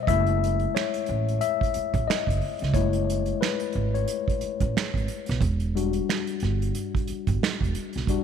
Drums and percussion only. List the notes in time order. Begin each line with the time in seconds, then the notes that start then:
0.07 kick, closed hi-hat
0.26 closed hi-hat
0.44 closed hi-hat
0.60 closed hi-hat
0.76 finger snap, snare
0.94 closed hi-hat
1.06 closed hi-hat
1.28 closed hi-hat
1.41 closed hi-hat
1.61 kick, closed hi-hat
1.74 closed hi-hat
1.94 kick, closed hi-hat
2.10 finger snap, snare
2.27 kick, closed hi-hat
2.41 open hi-hat
2.59 snare, closed hi-hat
2.74 kick, closed hi-hat
2.93 closed hi-hat
3.10 closed hi-hat
3.26 closed hi-hat
3.42 finger snap, snare
3.60 closed hi-hat
3.72 closed hi-hat
3.95 closed hi-hat
4.08 closed hi-hat
4.28 kick, closed hi-hat
4.41 closed hi-hat
4.60 kick, closed hi-hat
4.77 finger snap, snare
4.94 kick, closed hi-hat
5.08 closed hi-hat
5.26 snare, closed hi-hat
5.41 kick, closed hi-hat
5.60 closed hi-hat
5.77 closed hi-hat
5.93 closed hi-hat
6.09 finger snap, snare
6.27 closed hi-hat
6.40 snare, closed hi-hat
6.62 closed hi-hat
6.75 closed hi-hat
6.95 kick, closed hi-hat
7.07 closed hi-hat
7.27 kick, closed hi-hat
7.43 finger snap, snare
7.61 kick, closed hi-hat
7.75 closed hi-hat
7.93 snare, closed hi-hat
8.07 kick, closed hi-hat